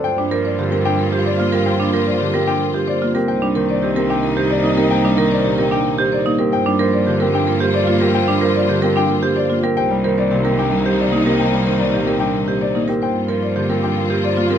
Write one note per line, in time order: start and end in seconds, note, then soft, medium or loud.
0.00 3.31 D4 medium
0.04 3.14 G2 medium
0.04 3.11 A#3 medium
0.04 3.11 F4 medium
0.04 3.06 F4 medium
0.04 0.22 C5 medium
0.04 0.22 G5 medium
0.18 1.79 G3 medium
0.18 0.35 D4 medium
0.31 1.93 F3 medium
0.31 0.49 A#4 medium
0.31 0.49 C5 medium
0.45 0.62 C5 medium
0.45 0.62 D5 medium
0.59 2.19 D3 medium
0.59 0.76 G4 medium
0.71 1.52 C4 medium
0.71 0.89 G4 medium
0.71 0.89 A#4 medium
0.85 1.03 D4 medium
0.85 1.03 G5 medium
0.99 1.16 A#4 medium
1.12 1.30 G4 medium
1.12 1.30 C5 medium
1.25 1.44 C5 medium
1.25 1.43 D5 medium
1.39 3.02 A#3 medium
1.39 1.57 F4 medium
1.53 2.33 C4 medium
1.53 1.71 G4 medium
1.53 1.70 A#4 medium
1.66 1.84 C5 medium
1.66 1.84 G5 medium
1.80 3.41 G3 medium
1.80 1.97 D4 medium
1.93 3.31 F3 medium
1.93 2.11 A#4 medium
1.93 2.11 C5 medium
2.06 2.24 C5 medium
2.06 2.24 D5 medium
2.20 3.31 D3 medium
2.20 2.38 G4 medium
2.33 3.14 C4 medium
2.33 2.51 G4 medium
2.33 2.51 A#4 medium
2.47 2.65 D4 medium
2.47 2.65 G5 medium
2.61 2.79 A#4 medium
2.74 2.92 G4 medium
2.74 2.92 C5 medium
2.87 3.05 C5 medium
2.87 3.05 D5 medium
3.02 4.63 A#3 medium
3.02 3.19 F4 medium
3.15 3.95 C4 medium
3.15 3.33 G4 medium
3.15 3.32 A#4 medium
3.28 6.38 C2 medium
3.28 6.35 A#3 medium
3.28 6.35 D#4 medium
3.28 3.46 C5 medium
3.28 3.46 G5 medium
3.42 5.03 G3 medium
3.42 3.60 D4 medium
3.55 5.16 D#3 medium
3.55 3.73 A#4 medium
3.55 3.73 C5 medium
3.69 3.86 C5 medium
3.69 3.87 D5 medium
3.83 6.55 C3 medium
3.83 4.00 G4 medium
3.96 4.76 C4 medium
3.96 4.14 G4 medium
3.96 4.14 A#4 medium
4.10 4.27 D4 medium
4.10 4.27 G5 medium
4.23 4.41 A#4 medium
4.37 4.54 G4 medium
4.37 4.54 C5 medium
4.50 4.68 C5 medium
4.50 4.68 D5 medium
4.64 6.25 A#3 medium
4.64 4.81 D#4 medium
4.77 5.57 C4 medium
4.77 4.95 G4 medium
4.77 4.95 A#4 medium
4.91 5.08 C5 medium
4.91 5.08 G5 medium
5.04 6.65 G3 medium
5.04 5.22 D4 medium
5.17 6.55 D#3 medium
5.17 5.35 A#4 medium
5.17 5.35 C5 medium
5.31 5.49 C5 medium
5.31 5.49 D5 medium
5.44 6.55 A#2 medium
5.44 5.62 G4 medium
5.58 6.39 C4 medium
5.58 5.76 G4 medium
5.58 5.76 A#4 medium
5.71 5.89 D4 medium
5.71 5.89 G5 medium
5.85 6.03 A#4 medium
5.98 6.16 G4 medium
5.98 6.17 C5 medium
6.12 6.30 C5 medium
6.12 6.30 D5 medium
6.26 7.86 A#3 medium
6.26 6.43 D#4 medium
6.39 6.55 C4 medium
6.39 6.57 G4 medium
6.39 6.57 A#4 medium
6.52 9.62 G2 medium
6.52 9.59 A#3 medium
6.52 9.60 F4 medium
6.52 6.70 C5 medium
6.52 6.70 G5 medium
6.66 8.27 G3 medium
6.66 6.84 D4 medium
6.79 8.41 F3 medium
6.79 6.97 A#4 medium
6.79 6.98 C5 medium
6.93 7.11 C5 medium
6.93 7.11 D5 medium
7.07 8.68 D3 medium
7.07 7.24 G4 medium
7.20 8.00 C4 medium
7.20 7.38 G4 medium
7.20 7.38 A#4 medium
7.34 7.51 D4 medium
7.34 7.52 G5 medium
7.47 7.65 A#4 medium
7.60 7.78 G4 medium
7.60 7.79 C5 medium
7.74 7.92 C5 medium
7.74 7.92 D5 medium
7.87 9.49 A#3 medium
7.87 8.05 F4 medium
8.01 8.81 C4 medium
8.01 8.19 G4 medium
8.01 8.19 A#4 medium
8.14 8.32 C5 medium
8.14 8.32 G5 medium
8.28 9.89 G3 medium
8.28 8.46 D4 medium
8.41 9.79 F3 medium
8.41 8.59 A#4 medium
8.41 8.60 C5 medium
8.56 8.73 D5 medium
8.69 9.79 D3 medium
8.69 8.87 G4 medium
8.82 9.62 C4 medium
8.82 9.00 G4 medium
8.82 9.00 A#4 medium
8.96 9.14 D4 medium
8.96 9.14 G5 medium
9.09 9.27 A#4 medium
9.23 9.41 G4 medium
9.23 9.41 C5 medium
9.36 9.54 C5 medium
9.36 9.54 D5 medium
9.50 11.10 A#3 medium
9.50 9.68 F4 medium
9.63 10.43 C4 medium
9.63 9.81 G4 medium
9.63 9.81 A#4 medium
9.77 12.87 C2 medium
9.77 12.84 A#3 medium
9.77 12.84 D#4 medium
9.77 12.75 D#4 medium
9.77 9.95 C5 medium
9.77 9.95 G5 medium
9.90 11.51 G3 medium
10.04 11.65 D#3 medium
10.04 10.22 A#4 medium
10.04 10.22 C5 medium
10.18 10.35 C5 medium
10.18 10.35 D5 medium
10.31 13.03 C3 medium
10.31 10.49 G4 medium
10.45 11.24 C4 medium
10.45 10.62 G4 medium
10.45 10.62 A#4 medium
10.59 10.76 D4 medium
10.59 10.76 G5 medium
10.72 10.89 A#4 medium
10.86 11.03 G4 medium
10.86 11.03 C5 medium
10.99 11.16 C5 medium
10.99 11.17 D5 medium
11.12 12.74 A#3 medium
11.12 11.30 D#4 medium
11.25 12.06 C4 medium
11.25 11.44 G4 medium
11.25 11.44 A#4 medium
11.40 11.57 C5 soft
11.40 11.57 G5 medium
11.52 14.58 G3 medium
11.66 13.04 D#3 medium
11.66 11.84 A#4 medium
11.66 11.84 C5 medium
11.79 11.98 C5 medium
11.79 11.97 D5 medium
11.93 13.04 A#2 medium
11.93 12.11 G4 medium
12.07 12.87 C4 medium
12.07 12.24 G4 medium
12.07 12.25 A#4 medium
12.20 12.38 D4 medium
12.20 12.38 G5 medium
12.34 12.52 A#4 medium
12.48 12.65 G4 medium
12.48 12.65 C5 medium
12.61 12.79 C5 medium
12.61 12.79 D5 medium
12.75 14.35 A#3 medium
12.75 12.92 D#4 medium
12.88 13.04 C4 medium
12.88 13.06 G4 medium
12.88 13.05 A#4 medium
13.01 14.58 G2 medium
13.01 14.58 A#3 medium
13.01 14.58 F4 medium
13.01 13.19 C5 medium
13.01 13.19 G5 medium
13.28 14.58 F3 medium
13.28 13.46 A#4 medium
13.28 13.47 C5 medium
13.42 13.60 C5 medium
13.42 13.60 D5 medium
13.56 14.58 D3 medium
13.56 13.73 G4 medium
13.69 14.49 C4 medium
13.69 13.87 G4 medium
13.69 13.87 A#4 medium
13.83 14.00 D4 medium
13.83 14.01 G5 medium
13.97 14.14 A#4 medium
14.10 14.27 G4 medium
14.10 14.28 C5 medium
14.24 14.41 C5 medium
14.24 14.41 D5 medium
14.37 14.58 A#3 medium
14.37 14.54 F4 medium
14.50 14.58 C4 medium
14.50 14.58 G4 medium
14.50 14.58 A#4 medium